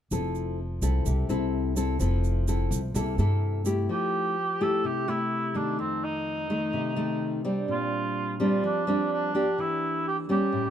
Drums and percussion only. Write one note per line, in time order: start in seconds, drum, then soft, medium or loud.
0.11 shaker medium
0.35 shaker soft
0.82 shaker medium
1.06 shaker soft
1.30 shaker soft
1.77 shaker medium
2.00 shaker medium
2.24 shaker soft
2.48 shaker soft
2.72 shaker medium
2.95 shaker medium
3.18 shaker soft
3.65 shaker medium